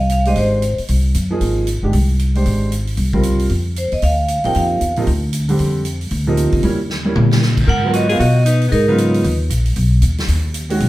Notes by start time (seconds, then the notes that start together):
Already playing: C2 F5
0.10 F5, closed hi-hat
0.25 G#3 D4 G4 C5 D#5, open hi-hat
0.36 G#1 C5, open hi-hat
0.62 closed hi-hat
0.78 muted upright bass stroke, open hi-hat
0.88 C2, open hi-hat
1.14 F#2, closed hi-hat
1.31 F3 A#3 D#4 G#4
1.41 G#1, open hi-hat
1.67 closed hi-hat
1.83 G1 D#3 G#3 D4 G4
1.93 C2, open hi-hat
2.19 closed hi-hat
2.35 G#3 D4 G4 C5, open hi-hat
2.46 G#1, open hi-hat
2.72 closed hi-hat
2.87 open hi-hat
2.97 C2, open hi-hat
3.13 G3 C4 F4 A#4, kick
3.23 closed hi-hat
3.39 open hi-hat
3.49 F2, open hi-hat
3.76 C5, closed hi-hat
3.92 E2 D#5, open hi-hat
4.02 D2 F5, open hi-hat
4.28 F5, closed hi-hat
4.44 D#2 C3 F3 A#3 D#4 G5, open hi-hat
4.55 F2 F5, open hi-hat
4.81 E2, closed hi-hat
4.96 C3 F3 A#3 D#4, open hi-hat
5.07 D2, open hi-hat
5.33 closed hi-hat
5.49 D3 G3 C4 G4, open hi-hat
5.59 F2, open hi-hat
5.85 closed hi-hat
6.01 open hi-hat
6.11 D2, open hi-hat
6.27 C3 F3 A#3 D#4
6.37 closed hi-hat
6.52 E2, kick, open hi-hat
6.63 D#2 G3 A#3 C#4 E4, open hi-hat
6.90 snare
7.05 G3 A#3 C#4 E4
7.16 A#2, mid tom
7.31 snare
7.42 snare
7.57 kick, crash
7.67 G#2 A#4 F#5
7.84 F#3 B3 F4 A#4
7.93 F#4 D#5, closed hi-hat
8.09 F#3 B3 F4 G#4 A#4 F5, open hi-hat
8.19 B2 F#4 D#5, open hi-hat
8.45 D#4 B4, closed hi-hat
8.62 open hi-hat
8.68 G#2 B3 D#4 G#4
8.72 A#4, open hi-hat
8.87 C#3 F#3 B3 D#4 F4 B4
8.98 closed hi-hat
9.14 open hi-hat
9.24 D#2, open hi-hat
9.50 A#1, closed hi-hat
9.66 open hi-hat
9.76 B1, open hi-hat
10.02 D#2, closed hi-hat
10.18 snare, open hi-hat
10.28 D#2, open hi-hat
10.54 closed hi-hat
10.70 D#3 G#3 C#4 F#4, open hi-hat
10.80 B1, open hi-hat